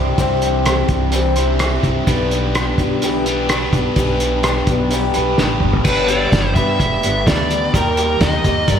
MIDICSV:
0, 0, Header, 1, 6, 480
1, 0, Start_track
1, 0, Tempo, 472441
1, 184, Time_signature, 4, 2, 24, 8
1, 8934, End_track
2, 0, Start_track
2, 0, Title_t, "Lead electric guitar"
2, 0, Program_c, 0, 29
2, 5937, Note_on_c, 0, 71, 78
2, 6179, Note_on_c, 0, 74, 82
2, 6193, Note_off_c, 0, 71, 0
2, 6650, Note_off_c, 0, 74, 0
2, 6654, Note_on_c, 0, 76, 96
2, 6896, Note_off_c, 0, 76, 0
2, 6908, Note_on_c, 0, 76, 91
2, 7387, Note_off_c, 0, 76, 0
2, 7391, Note_on_c, 0, 74, 84
2, 7836, Note_off_c, 0, 74, 0
2, 7883, Note_on_c, 0, 70, 74
2, 8350, Note_on_c, 0, 75, 79
2, 8369, Note_off_c, 0, 70, 0
2, 8828, Note_off_c, 0, 75, 0
2, 8828, Note_on_c, 0, 74, 79
2, 8934, Note_off_c, 0, 74, 0
2, 8934, End_track
3, 0, Start_track
3, 0, Title_t, "Overdriven electric guitar"
3, 0, Program_c, 1, 29
3, 0, Note_on_c, 1, 48, 63
3, 0, Note_on_c, 1, 52, 64
3, 0, Note_on_c, 1, 55, 66
3, 0, Note_on_c, 1, 60, 74
3, 0, Note_on_c, 1, 64, 72
3, 0, Note_on_c, 1, 72, 73
3, 171, Note_off_c, 1, 48, 0
3, 178, Note_off_c, 1, 60, 0
3, 182, Note_off_c, 1, 52, 0
3, 182, Note_on_c, 1, 48, 80
3, 184, Note_off_c, 1, 72, 0
3, 186, Note_on_c, 1, 52, 75
3, 187, Note_off_c, 1, 55, 0
3, 192, Note_on_c, 1, 55, 77
3, 193, Note_on_c, 1, 60, 76
3, 198, Note_off_c, 1, 64, 0
3, 202, Note_on_c, 1, 64, 79
3, 210, Note_on_c, 1, 72, 81
3, 1372, Note_off_c, 1, 48, 0
3, 1372, Note_off_c, 1, 72, 0
3, 1378, Note_off_c, 1, 60, 0
3, 1385, Note_on_c, 1, 72, 66
3, 1388, Note_off_c, 1, 64, 0
3, 1392, Note_on_c, 1, 64, 66
3, 1399, Note_off_c, 1, 55, 0
3, 1400, Note_on_c, 1, 60, 59
3, 1402, Note_off_c, 1, 52, 0
3, 1403, Note_on_c, 1, 55, 60
3, 1407, Note_on_c, 1, 52, 59
3, 1411, Note_on_c, 1, 48, 57
3, 1609, Note_off_c, 1, 48, 0
3, 1612, Note_off_c, 1, 72, 0
3, 1620, Note_off_c, 1, 60, 0
3, 1621, Note_on_c, 1, 48, 60
3, 1628, Note_off_c, 1, 52, 0
3, 1630, Note_off_c, 1, 55, 0
3, 1632, Note_on_c, 1, 52, 61
3, 1634, Note_on_c, 1, 55, 65
3, 1637, Note_on_c, 1, 60, 59
3, 1640, Note_off_c, 1, 64, 0
3, 1644, Note_on_c, 1, 64, 76
3, 1651, Note_on_c, 1, 72, 68
3, 2092, Note_off_c, 1, 48, 0
3, 2100, Note_off_c, 1, 60, 0
3, 2101, Note_off_c, 1, 55, 0
3, 2105, Note_on_c, 1, 59, 76
3, 2107, Note_off_c, 1, 72, 0
3, 2114, Note_on_c, 1, 62, 80
3, 2122, Note_off_c, 1, 64, 0
3, 2126, Note_on_c, 1, 67, 82
3, 2130, Note_on_c, 1, 71, 89
3, 2145, Note_off_c, 1, 52, 0
3, 3311, Note_off_c, 1, 71, 0
3, 3315, Note_on_c, 1, 71, 66
3, 3320, Note_off_c, 1, 67, 0
3, 3324, Note_on_c, 1, 67, 59
3, 3325, Note_off_c, 1, 62, 0
3, 3329, Note_on_c, 1, 62, 67
3, 3335, Note_off_c, 1, 59, 0
3, 3339, Note_on_c, 1, 59, 53
3, 3541, Note_off_c, 1, 59, 0
3, 3545, Note_on_c, 1, 59, 61
3, 3550, Note_off_c, 1, 62, 0
3, 3554, Note_on_c, 1, 62, 67
3, 3557, Note_off_c, 1, 67, 0
3, 3561, Note_on_c, 1, 67, 70
3, 3568, Note_off_c, 1, 71, 0
3, 3572, Note_on_c, 1, 71, 70
3, 4022, Note_off_c, 1, 59, 0
3, 4026, Note_on_c, 1, 59, 76
3, 4037, Note_off_c, 1, 62, 0
3, 4041, Note_on_c, 1, 62, 82
3, 4042, Note_off_c, 1, 67, 0
3, 4046, Note_on_c, 1, 67, 88
3, 4049, Note_off_c, 1, 71, 0
3, 4053, Note_on_c, 1, 71, 88
3, 5216, Note_off_c, 1, 59, 0
3, 5224, Note_off_c, 1, 62, 0
3, 5226, Note_off_c, 1, 67, 0
3, 5227, Note_off_c, 1, 71, 0
3, 5239, Note_on_c, 1, 71, 64
3, 5246, Note_on_c, 1, 67, 65
3, 5256, Note_on_c, 1, 62, 63
3, 5264, Note_on_c, 1, 59, 61
3, 5462, Note_off_c, 1, 71, 0
3, 5466, Note_off_c, 1, 59, 0
3, 5466, Note_off_c, 1, 67, 0
3, 5471, Note_off_c, 1, 62, 0
3, 5478, Note_on_c, 1, 59, 65
3, 5489, Note_on_c, 1, 62, 70
3, 5499, Note_on_c, 1, 67, 65
3, 5507, Note_on_c, 1, 71, 67
3, 5941, Note_off_c, 1, 59, 0
3, 5947, Note_off_c, 1, 62, 0
3, 5951, Note_on_c, 1, 55, 84
3, 5952, Note_off_c, 1, 67, 0
3, 5956, Note_off_c, 1, 71, 0
3, 5964, Note_on_c, 1, 62, 88
3, 5971, Note_on_c, 1, 59, 88
3, 5980, Note_on_c, 1, 71, 99
3, 6664, Note_off_c, 1, 62, 0
3, 6666, Note_off_c, 1, 71, 0
3, 6667, Note_off_c, 1, 59, 0
3, 6678, Note_on_c, 1, 71, 79
3, 6684, Note_on_c, 1, 59, 84
3, 6695, Note_on_c, 1, 62, 67
3, 6698, Note_off_c, 1, 55, 0
3, 6702, Note_on_c, 1, 55, 62
3, 7858, Note_off_c, 1, 71, 0
3, 7859, Note_on_c, 1, 51, 87
3, 7861, Note_off_c, 1, 59, 0
3, 7862, Note_off_c, 1, 55, 0
3, 7866, Note_off_c, 1, 62, 0
3, 7867, Note_on_c, 1, 58, 87
3, 7874, Note_on_c, 1, 55, 88
3, 7884, Note_on_c, 1, 67, 88
3, 7886, Note_on_c, 1, 70, 102
3, 8568, Note_off_c, 1, 51, 0
3, 8568, Note_off_c, 1, 70, 0
3, 8571, Note_off_c, 1, 58, 0
3, 8574, Note_off_c, 1, 67, 0
3, 8575, Note_off_c, 1, 55, 0
3, 8581, Note_on_c, 1, 70, 89
3, 8586, Note_on_c, 1, 67, 86
3, 8591, Note_on_c, 1, 55, 75
3, 8601, Note_on_c, 1, 58, 68
3, 8602, Note_on_c, 1, 51, 70
3, 8934, Note_off_c, 1, 51, 0
3, 8934, Note_off_c, 1, 55, 0
3, 8934, Note_off_c, 1, 58, 0
3, 8934, Note_off_c, 1, 67, 0
3, 8934, Note_off_c, 1, 70, 0
3, 8934, End_track
4, 0, Start_track
4, 0, Title_t, "Twelve-string acoustic guitar"
4, 0, Program_c, 2, 25
4, 0, Note_on_c, 2, 55, 43
4, 0, Note_on_c, 2, 60, 45
4, 0, Note_on_c, 2, 62, 48
4, 0, Note_on_c, 2, 67, 50
4, 182, Note_off_c, 2, 55, 0
4, 183, Note_off_c, 2, 67, 0
4, 187, Note_off_c, 2, 60, 0
4, 189, Note_on_c, 2, 48, 78
4, 190, Note_off_c, 2, 62, 0
4, 194, Note_on_c, 2, 55, 69
4, 195, Note_on_c, 2, 52, 77
4, 200, Note_on_c, 2, 60, 76
4, 206, Note_on_c, 2, 62, 89
4, 206, Note_on_c, 2, 67, 79
4, 668, Note_off_c, 2, 48, 0
4, 668, Note_off_c, 2, 55, 0
4, 668, Note_off_c, 2, 60, 0
4, 672, Note_on_c, 2, 55, 56
4, 680, Note_on_c, 2, 60, 55
4, 686, Note_off_c, 2, 62, 0
4, 690, Note_on_c, 2, 62, 66
4, 694, Note_off_c, 2, 67, 0
4, 698, Note_on_c, 2, 67, 63
4, 720, Note_off_c, 2, 52, 0
4, 902, Note_off_c, 2, 67, 0
4, 910, Note_off_c, 2, 55, 0
4, 913, Note_off_c, 2, 60, 0
4, 914, Note_on_c, 2, 67, 51
4, 918, Note_off_c, 2, 62, 0
4, 929, Note_on_c, 2, 62, 43
4, 934, Note_on_c, 2, 60, 43
4, 942, Note_on_c, 2, 55, 38
4, 1145, Note_off_c, 2, 55, 0
4, 1149, Note_on_c, 2, 48, 75
4, 1151, Note_off_c, 2, 60, 0
4, 1151, Note_off_c, 2, 67, 0
4, 1152, Note_off_c, 2, 62, 0
4, 1155, Note_on_c, 2, 52, 77
4, 1157, Note_on_c, 2, 55, 81
4, 1163, Note_on_c, 2, 60, 81
4, 1164, Note_on_c, 2, 62, 75
4, 1172, Note_on_c, 2, 67, 92
4, 1624, Note_off_c, 2, 55, 0
4, 1628, Note_on_c, 2, 55, 53
4, 1629, Note_off_c, 2, 60, 0
4, 1630, Note_off_c, 2, 48, 0
4, 1641, Note_on_c, 2, 60, 64
4, 1642, Note_off_c, 2, 62, 0
4, 1646, Note_on_c, 2, 62, 59
4, 1654, Note_off_c, 2, 67, 0
4, 1658, Note_on_c, 2, 67, 68
4, 1677, Note_off_c, 2, 52, 0
4, 2103, Note_on_c, 2, 47, 73
4, 2104, Note_off_c, 2, 55, 0
4, 2106, Note_on_c, 2, 52, 79
4, 2108, Note_on_c, 2, 55, 73
4, 2110, Note_off_c, 2, 60, 0
4, 2114, Note_on_c, 2, 59, 78
4, 2115, Note_off_c, 2, 62, 0
4, 2117, Note_off_c, 2, 67, 0
4, 2119, Note_on_c, 2, 62, 77
4, 2121, Note_on_c, 2, 67, 83
4, 2586, Note_off_c, 2, 55, 0
4, 2588, Note_off_c, 2, 47, 0
4, 2589, Note_off_c, 2, 52, 0
4, 2590, Note_on_c, 2, 55, 59
4, 2603, Note_off_c, 2, 59, 0
4, 2607, Note_on_c, 2, 59, 57
4, 2608, Note_off_c, 2, 62, 0
4, 2612, Note_on_c, 2, 62, 63
4, 2618, Note_off_c, 2, 67, 0
4, 2622, Note_on_c, 2, 67, 67
4, 2823, Note_off_c, 2, 67, 0
4, 2830, Note_off_c, 2, 62, 0
4, 2831, Note_off_c, 2, 55, 0
4, 2835, Note_on_c, 2, 67, 53
4, 2840, Note_off_c, 2, 59, 0
4, 2842, Note_on_c, 2, 62, 48
4, 2852, Note_on_c, 2, 59, 42
4, 2862, Note_on_c, 2, 55, 42
4, 3074, Note_off_c, 2, 55, 0
4, 3074, Note_off_c, 2, 67, 0
4, 3075, Note_off_c, 2, 59, 0
4, 3075, Note_on_c, 2, 47, 72
4, 3077, Note_off_c, 2, 62, 0
4, 3079, Note_on_c, 2, 52, 71
4, 3086, Note_on_c, 2, 55, 72
4, 3087, Note_on_c, 2, 59, 83
4, 3089, Note_on_c, 2, 62, 82
4, 3097, Note_on_c, 2, 67, 80
4, 3545, Note_off_c, 2, 55, 0
4, 3549, Note_on_c, 2, 55, 57
4, 3555, Note_off_c, 2, 47, 0
4, 3557, Note_off_c, 2, 52, 0
4, 3561, Note_off_c, 2, 59, 0
4, 3565, Note_on_c, 2, 59, 52
4, 3569, Note_off_c, 2, 62, 0
4, 3573, Note_on_c, 2, 62, 65
4, 3578, Note_off_c, 2, 67, 0
4, 3582, Note_on_c, 2, 67, 65
4, 3792, Note_off_c, 2, 55, 0
4, 3796, Note_off_c, 2, 67, 0
4, 3799, Note_off_c, 2, 59, 0
4, 3803, Note_off_c, 2, 62, 0
4, 3809, Note_on_c, 2, 67, 49
4, 3820, Note_on_c, 2, 62, 43
4, 3833, Note_on_c, 2, 59, 43
4, 3840, Note_on_c, 2, 55, 38
4, 4040, Note_off_c, 2, 55, 0
4, 4041, Note_off_c, 2, 67, 0
4, 4042, Note_on_c, 2, 47, 68
4, 4045, Note_off_c, 2, 59, 0
4, 4047, Note_off_c, 2, 62, 0
4, 4049, Note_on_c, 2, 52, 76
4, 4052, Note_on_c, 2, 55, 76
4, 4057, Note_on_c, 2, 59, 82
4, 4063, Note_on_c, 2, 67, 88
4, 4064, Note_on_c, 2, 62, 82
4, 4515, Note_off_c, 2, 55, 0
4, 4518, Note_off_c, 2, 47, 0
4, 4522, Note_off_c, 2, 52, 0
4, 4526, Note_off_c, 2, 59, 0
4, 4528, Note_on_c, 2, 55, 53
4, 4529, Note_off_c, 2, 62, 0
4, 4529, Note_off_c, 2, 67, 0
4, 4537, Note_on_c, 2, 59, 63
4, 4546, Note_on_c, 2, 62, 64
4, 4555, Note_on_c, 2, 67, 65
4, 4751, Note_off_c, 2, 67, 0
4, 4761, Note_off_c, 2, 55, 0
4, 4763, Note_on_c, 2, 67, 48
4, 4764, Note_off_c, 2, 62, 0
4, 4766, Note_off_c, 2, 59, 0
4, 4777, Note_on_c, 2, 62, 48
4, 4787, Note_on_c, 2, 59, 47
4, 4796, Note_on_c, 2, 55, 42
4, 4999, Note_off_c, 2, 67, 0
4, 5003, Note_on_c, 2, 47, 71
4, 5006, Note_off_c, 2, 55, 0
4, 5006, Note_off_c, 2, 62, 0
4, 5007, Note_off_c, 2, 59, 0
4, 5012, Note_on_c, 2, 52, 75
4, 5018, Note_on_c, 2, 55, 74
4, 5019, Note_on_c, 2, 59, 79
4, 5022, Note_on_c, 2, 62, 79
4, 5030, Note_on_c, 2, 67, 86
4, 5464, Note_off_c, 2, 55, 0
4, 5476, Note_on_c, 2, 55, 55
4, 5479, Note_off_c, 2, 47, 0
4, 5481, Note_off_c, 2, 59, 0
4, 5482, Note_off_c, 2, 62, 0
4, 5483, Note_off_c, 2, 52, 0
4, 5492, Note_off_c, 2, 67, 0
4, 5493, Note_on_c, 2, 59, 57
4, 5494, Note_on_c, 2, 62, 54
4, 5506, Note_on_c, 2, 67, 64
4, 5952, Note_off_c, 2, 55, 0
4, 5955, Note_on_c, 2, 43, 69
4, 5958, Note_off_c, 2, 59, 0
4, 5960, Note_off_c, 2, 62, 0
4, 5960, Note_off_c, 2, 67, 0
4, 5962, Note_on_c, 2, 50, 69
4, 5964, Note_on_c, 2, 55, 78
4, 5971, Note_on_c, 2, 59, 73
4, 5972, Note_on_c, 2, 62, 78
4, 5972, Note_on_c, 2, 67, 77
4, 6180, Note_off_c, 2, 67, 0
4, 6192, Note_on_c, 2, 67, 49
4, 6194, Note_off_c, 2, 43, 0
4, 6194, Note_off_c, 2, 62, 0
4, 6198, Note_off_c, 2, 50, 0
4, 6199, Note_off_c, 2, 55, 0
4, 6202, Note_off_c, 2, 59, 0
4, 6206, Note_on_c, 2, 62, 44
4, 6215, Note_on_c, 2, 59, 46
4, 6217, Note_on_c, 2, 55, 43
4, 6421, Note_off_c, 2, 55, 0
4, 6424, Note_off_c, 2, 59, 0
4, 6433, Note_off_c, 2, 67, 0
4, 6434, Note_on_c, 2, 55, 53
4, 6436, Note_on_c, 2, 59, 55
4, 6440, Note_off_c, 2, 62, 0
4, 6454, Note_on_c, 2, 62, 58
4, 6457, Note_on_c, 2, 67, 56
4, 6657, Note_off_c, 2, 67, 0
4, 6663, Note_off_c, 2, 62, 0
4, 6669, Note_on_c, 2, 67, 47
4, 6673, Note_off_c, 2, 55, 0
4, 6674, Note_off_c, 2, 59, 0
4, 6675, Note_on_c, 2, 62, 44
4, 6692, Note_on_c, 2, 59, 45
4, 6696, Note_on_c, 2, 55, 41
4, 7140, Note_off_c, 2, 67, 0
4, 7153, Note_off_c, 2, 62, 0
4, 7153, Note_on_c, 2, 67, 55
4, 7162, Note_off_c, 2, 59, 0
4, 7163, Note_off_c, 2, 55, 0
4, 7164, Note_on_c, 2, 62, 47
4, 7175, Note_on_c, 2, 59, 45
4, 7181, Note_on_c, 2, 55, 39
4, 7379, Note_off_c, 2, 55, 0
4, 7391, Note_off_c, 2, 59, 0
4, 7391, Note_on_c, 2, 55, 59
4, 7392, Note_off_c, 2, 67, 0
4, 7397, Note_off_c, 2, 62, 0
4, 7403, Note_on_c, 2, 59, 59
4, 7410, Note_on_c, 2, 62, 63
4, 7422, Note_on_c, 2, 67, 61
4, 7870, Note_off_c, 2, 55, 0
4, 7876, Note_off_c, 2, 59, 0
4, 7877, Note_on_c, 2, 51, 65
4, 7879, Note_off_c, 2, 62, 0
4, 7885, Note_off_c, 2, 67, 0
4, 7890, Note_on_c, 2, 55, 79
4, 7892, Note_on_c, 2, 58, 73
4, 7896, Note_on_c, 2, 63, 75
4, 7899, Note_on_c, 2, 67, 73
4, 8098, Note_off_c, 2, 67, 0
4, 8110, Note_on_c, 2, 67, 47
4, 8112, Note_off_c, 2, 63, 0
4, 8113, Note_off_c, 2, 51, 0
4, 8119, Note_off_c, 2, 55, 0
4, 8120, Note_off_c, 2, 58, 0
4, 8124, Note_on_c, 2, 63, 46
4, 8139, Note_on_c, 2, 58, 43
4, 8341, Note_off_c, 2, 58, 0
4, 8343, Note_on_c, 2, 55, 59
4, 8349, Note_off_c, 2, 67, 0
4, 8352, Note_off_c, 2, 63, 0
4, 8353, Note_on_c, 2, 58, 56
4, 8364, Note_on_c, 2, 63, 59
4, 8370, Note_on_c, 2, 67, 62
4, 8581, Note_off_c, 2, 67, 0
4, 8585, Note_off_c, 2, 55, 0
4, 8590, Note_off_c, 2, 58, 0
4, 8593, Note_on_c, 2, 67, 48
4, 8595, Note_off_c, 2, 63, 0
4, 8607, Note_on_c, 2, 63, 49
4, 8614, Note_on_c, 2, 58, 41
4, 8934, Note_off_c, 2, 58, 0
4, 8934, Note_off_c, 2, 63, 0
4, 8934, Note_off_c, 2, 67, 0
4, 8934, End_track
5, 0, Start_track
5, 0, Title_t, "Upright bass"
5, 0, Program_c, 3, 32
5, 0, Note_on_c, 3, 36, 75
5, 164, Note_off_c, 3, 36, 0
5, 183, Note_on_c, 3, 36, 73
5, 865, Note_off_c, 3, 36, 0
5, 901, Note_on_c, 3, 36, 74
5, 1826, Note_off_c, 3, 36, 0
5, 1865, Note_on_c, 3, 36, 70
5, 2087, Note_off_c, 3, 36, 0
5, 2105, Note_on_c, 3, 35, 80
5, 2789, Note_off_c, 3, 35, 0
5, 2829, Note_on_c, 3, 35, 72
5, 3751, Note_off_c, 3, 35, 0
5, 3788, Note_on_c, 3, 35, 72
5, 4010, Note_off_c, 3, 35, 0
5, 4023, Note_on_c, 3, 35, 76
5, 4708, Note_off_c, 3, 35, 0
5, 4745, Note_on_c, 3, 35, 70
5, 5189, Note_off_c, 3, 35, 0
5, 5248, Note_on_c, 3, 35, 65
5, 5458, Note_off_c, 3, 35, 0
5, 5489, Note_on_c, 3, 33, 66
5, 5699, Note_off_c, 3, 33, 0
5, 5718, Note_on_c, 3, 31, 72
5, 5932, Note_off_c, 3, 31, 0
5, 5944, Note_on_c, 3, 31, 80
5, 6388, Note_off_c, 3, 31, 0
5, 6422, Note_on_c, 3, 31, 87
5, 6646, Note_off_c, 3, 31, 0
5, 6660, Note_on_c, 3, 43, 82
5, 6885, Note_off_c, 3, 43, 0
5, 6905, Note_on_c, 3, 28, 86
5, 7127, Note_off_c, 3, 28, 0
5, 7158, Note_on_c, 3, 31, 93
5, 7374, Note_off_c, 3, 31, 0
5, 7388, Note_on_c, 3, 38, 81
5, 7827, Note_off_c, 3, 38, 0
5, 7863, Note_on_c, 3, 39, 83
5, 8304, Note_off_c, 3, 39, 0
5, 8339, Note_on_c, 3, 39, 79
5, 8562, Note_off_c, 3, 39, 0
5, 8583, Note_on_c, 3, 39, 94
5, 8804, Note_off_c, 3, 39, 0
5, 8819, Note_on_c, 3, 43, 84
5, 8934, Note_off_c, 3, 43, 0
5, 8934, End_track
6, 0, Start_track
6, 0, Title_t, "Drums"
6, 184, Note_on_c, 9, 36, 90
6, 184, Note_on_c, 9, 42, 70
6, 285, Note_off_c, 9, 42, 0
6, 286, Note_off_c, 9, 36, 0
6, 425, Note_on_c, 9, 42, 52
6, 527, Note_off_c, 9, 42, 0
6, 666, Note_on_c, 9, 42, 68
6, 672, Note_on_c, 9, 37, 88
6, 767, Note_off_c, 9, 42, 0
6, 773, Note_off_c, 9, 37, 0
6, 899, Note_on_c, 9, 42, 53
6, 903, Note_on_c, 9, 36, 73
6, 1001, Note_off_c, 9, 42, 0
6, 1004, Note_off_c, 9, 36, 0
6, 1136, Note_on_c, 9, 42, 66
6, 1238, Note_off_c, 9, 42, 0
6, 1379, Note_on_c, 9, 42, 53
6, 1481, Note_off_c, 9, 42, 0
6, 1619, Note_on_c, 9, 42, 70
6, 1625, Note_on_c, 9, 37, 90
6, 1721, Note_off_c, 9, 42, 0
6, 1727, Note_off_c, 9, 37, 0
6, 1863, Note_on_c, 9, 36, 71
6, 1866, Note_on_c, 9, 42, 45
6, 1965, Note_off_c, 9, 36, 0
6, 1968, Note_off_c, 9, 42, 0
6, 2105, Note_on_c, 9, 36, 90
6, 2111, Note_on_c, 9, 42, 68
6, 2207, Note_off_c, 9, 36, 0
6, 2212, Note_off_c, 9, 42, 0
6, 2351, Note_on_c, 9, 42, 50
6, 2452, Note_off_c, 9, 42, 0
6, 2589, Note_on_c, 9, 42, 61
6, 2595, Note_on_c, 9, 37, 88
6, 2691, Note_off_c, 9, 42, 0
6, 2697, Note_off_c, 9, 37, 0
6, 2825, Note_on_c, 9, 36, 69
6, 2830, Note_on_c, 9, 42, 52
6, 2927, Note_off_c, 9, 36, 0
6, 2931, Note_off_c, 9, 42, 0
6, 3067, Note_on_c, 9, 42, 62
6, 3169, Note_off_c, 9, 42, 0
6, 3312, Note_on_c, 9, 42, 47
6, 3413, Note_off_c, 9, 42, 0
6, 3547, Note_on_c, 9, 42, 68
6, 3553, Note_on_c, 9, 37, 91
6, 3648, Note_off_c, 9, 42, 0
6, 3654, Note_off_c, 9, 37, 0
6, 3787, Note_on_c, 9, 36, 73
6, 3789, Note_on_c, 9, 42, 48
6, 3889, Note_off_c, 9, 36, 0
6, 3891, Note_off_c, 9, 42, 0
6, 4024, Note_on_c, 9, 42, 69
6, 4027, Note_on_c, 9, 36, 97
6, 4126, Note_off_c, 9, 42, 0
6, 4129, Note_off_c, 9, 36, 0
6, 4268, Note_on_c, 9, 42, 52
6, 4370, Note_off_c, 9, 42, 0
6, 4505, Note_on_c, 9, 42, 72
6, 4511, Note_on_c, 9, 37, 88
6, 4606, Note_off_c, 9, 42, 0
6, 4612, Note_off_c, 9, 37, 0
6, 4743, Note_on_c, 9, 42, 58
6, 4747, Note_on_c, 9, 36, 70
6, 4845, Note_off_c, 9, 42, 0
6, 4848, Note_off_c, 9, 36, 0
6, 4985, Note_on_c, 9, 42, 67
6, 5086, Note_off_c, 9, 42, 0
6, 5221, Note_on_c, 9, 42, 52
6, 5323, Note_off_c, 9, 42, 0
6, 5465, Note_on_c, 9, 38, 48
6, 5566, Note_off_c, 9, 38, 0
6, 5692, Note_on_c, 9, 45, 68
6, 5794, Note_off_c, 9, 45, 0
6, 5825, Note_on_c, 9, 43, 65
6, 5927, Note_off_c, 9, 43, 0
6, 5939, Note_on_c, 9, 49, 97
6, 5944, Note_on_c, 9, 36, 96
6, 6041, Note_off_c, 9, 49, 0
6, 6045, Note_off_c, 9, 36, 0
6, 6181, Note_on_c, 9, 42, 60
6, 6282, Note_off_c, 9, 42, 0
6, 6424, Note_on_c, 9, 36, 67
6, 6427, Note_on_c, 9, 42, 77
6, 6433, Note_on_c, 9, 38, 94
6, 6526, Note_off_c, 9, 36, 0
6, 6528, Note_off_c, 9, 42, 0
6, 6534, Note_off_c, 9, 38, 0
6, 6664, Note_on_c, 9, 42, 59
6, 6666, Note_on_c, 9, 36, 82
6, 6766, Note_off_c, 9, 42, 0
6, 6768, Note_off_c, 9, 36, 0
6, 6906, Note_on_c, 9, 36, 92
6, 6910, Note_on_c, 9, 42, 76
6, 7008, Note_off_c, 9, 36, 0
6, 7012, Note_off_c, 9, 42, 0
6, 7146, Note_on_c, 9, 42, 64
6, 7248, Note_off_c, 9, 42, 0
6, 7385, Note_on_c, 9, 36, 73
6, 7389, Note_on_c, 9, 42, 83
6, 7395, Note_on_c, 9, 38, 102
6, 7487, Note_off_c, 9, 36, 0
6, 7491, Note_off_c, 9, 42, 0
6, 7497, Note_off_c, 9, 38, 0
6, 7626, Note_on_c, 9, 42, 57
6, 7727, Note_off_c, 9, 42, 0
6, 7863, Note_on_c, 9, 36, 107
6, 7866, Note_on_c, 9, 42, 91
6, 7964, Note_off_c, 9, 36, 0
6, 7967, Note_off_c, 9, 42, 0
6, 8101, Note_on_c, 9, 42, 67
6, 8202, Note_off_c, 9, 42, 0
6, 8338, Note_on_c, 9, 42, 87
6, 8340, Note_on_c, 9, 36, 72
6, 8345, Note_on_c, 9, 38, 100
6, 8440, Note_off_c, 9, 42, 0
6, 8442, Note_off_c, 9, 36, 0
6, 8446, Note_off_c, 9, 38, 0
6, 8579, Note_on_c, 9, 42, 66
6, 8580, Note_on_c, 9, 36, 81
6, 8681, Note_off_c, 9, 42, 0
6, 8682, Note_off_c, 9, 36, 0
6, 8818, Note_on_c, 9, 36, 93
6, 8818, Note_on_c, 9, 42, 88
6, 8919, Note_off_c, 9, 42, 0
6, 8920, Note_off_c, 9, 36, 0
6, 8934, End_track
0, 0, End_of_file